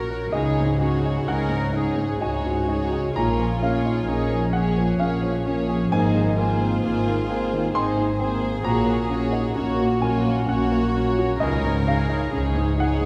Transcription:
Already playing: A#1 A#2 A#3 C#4 D#4 F#4 A#4 C#5
0.11 A#4
0.31 C#2 C#3 D#4 G#4 C#5 D#5
0.60 G#2
0.79 C#4 D#4 F#4 G#4 C#5
1.05 D#4
1.26 C#2 C#4 D#4 G#4 A#4 C#5 F#5
1.49 G#2
1.73 D#4 G#4 C#5
1.96 G#2
2.19 C#2 D#4 F#4 G#4 C#5 G#5
2.44 G#2
2.67 C#4 D#4 G#4 C#5
2.93 G#4
3.14 A#1 A#2 A#3 F4 G#4 C#5 A#5
3.38 F3
3.60 A#3 C#4 G#4 C#5 F5
3.86 D#4
4.05 A#1 F3 A#3 C#4 D#4 G#4 C#5
4.29 F3
4.52 A#3 C#4 G#4 C#5 F#5
4.76 F3
4.97 A#1 A#3 C#4 G#4 C#5 F5
5.22 F3
5.44 F3 A#3 C#4 G#4 C#5
5.69 G#4
5.90 G#1 G#2 A#3 D#4 G#4 C5 G#5
6.16 D#3
6.36 A#3 F4 G#4 C5
6.61 C4
6.81 G#1 A#3 C4 G#4 C5
6.86 A#3
7.07 D#3
7.28 C4 G#4 C5
7.32 A#3
7.53 D#3
7.72 G#1 C4 D#4 G#4 C5 C6
7.77 A#3
7.97 D#3
8.18 A#3 C4 G#4 C5
8.41 G#4
8.63 A#1 A#2 A#3 F#4 C#5 A#5
8.86 A#3
9.09 A#3 C#4 F#4 C#5
9.32 D#4
9.55 A#1 A#3 C#4 F#4 C#5
9.78 A#3
10.00 F#3 A#3 C#4 F4 C#5 G#5
10.04 F#4
10.23 A#3
10.47 A#1 A#3 C#4 F#4 C#5 F#5
10.71 A#3
10.93 A#3 C#4 F#4 C#5
11.19 F#4
11.39 C#2 D#4 G#4 A#4 C#5 D#5
11.43 C#3
11.64 G#2
11.85 C#4 D#4 G#4 C#5 F5
11.89 C#4
12.09 D#4
12.32 C#2 C#4 D#4 G#4 C#5
12.55 G#2
12.77 D#4 G#4 C#5 F#5
12.82 G#4
13.01 G#2

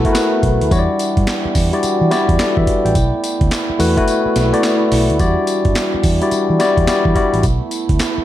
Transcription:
Already playing: A3 B3 E4 F#4 A4 B4
0.05 A3 E4 F#4 A#4, kick, closed hi-hat
0.13 B4, snare, clap, closed hi-hat, tambourine
0.43 B1, kick, closed hi-hat
0.61 D2, closed hi-hat
0.71 E2 E3 G3 D4 E4 F#4 C#5, kick, closed hi-hat, tambourine
0.79 D5
0.99 closed hi-hat, tambourine
1.17 G2, kick, closed hi-hat
1.27 snare, clap, closed hi-hat, tambourine
1.45 muted fingered electric bass stroke
1.55 E2, kick, open hi-hat, tambourine
1.73 G3 E4 F#4 D5, closed hi-hat
1.83 muted fingered electric bass stroke, closed hi-hat, tambourine
2.01 E3
2.11 G3 E4 F#4 D5, snare, closed hi-hat, tambourine
2.29 E2, kick, closed hi-hat
2.39 A4 D5, snare, clap, closed hi-hat, tambourine
2.57 E3 B4 E5, kick
2.67 kick, closed hi-hat
2.85 A1 D5 G5, closed hi-hat
2.95 B1 A3 B3 E4, kick, closed hi-hat, tambourine
3.24 closed hi-hat, tambourine
3.41 D2, kick, closed hi-hat
3.51 snare, clap, closed hi-hat, tambourine
3.70 muted fingered electric bass stroke
3.79 E2 A3 E4 F#4 B4, open hi-hat, tambourine
3.97 A3 E4 F#4 B4, kick, closed hi-hat
4.08 closed hi-hat, tambourine
4.26 muted fingered electric bass stroke
4.36 B1, snare, closed hi-hat, tambourine
4.53 A3 E4 F#4 D5, closed hi-hat
4.63 snare, clap, closed hi-hat, tambourine
4.92 B1, open hi-hat
5.10 D2, closed hi-hat
5.19 E2 E3 G3 D4 E4 F#4 D5, kick, closed hi-hat, tambourine
5.47 closed hi-hat, tambourine
5.65 G2, kick, closed hi-hat
5.75 snare, clap, closed hi-hat, tambourine
5.94 muted fingered electric bass stroke
6.04 E2, kick, open hi-hat, tambourine
6.22 G3 E4 F#4 D5, closed hi-hat
6.31 muted fingered electric bass stroke, closed hi-hat, tambourine
6.50 E3
6.60 G3 E4 F#4 D5, snare, closed hi-hat, tambourine
6.77 E2, kick, closed hi-hat
6.87 G3 E4 F#4 D5, snare, clap, closed hi-hat, tambourine
7.05 E3, kick
7.15 G3 E4 F#4 D5, kick, closed hi-hat
7.33 A1, closed hi-hat
7.43 B1 A3 B3 E4, kick, closed hi-hat, tambourine
7.71 closed hi-hat, tambourine
7.89 D2, kick, closed hi-hat
7.99 snare, clap, closed hi-hat, tambourine
8.18 muted fingered electric bass stroke

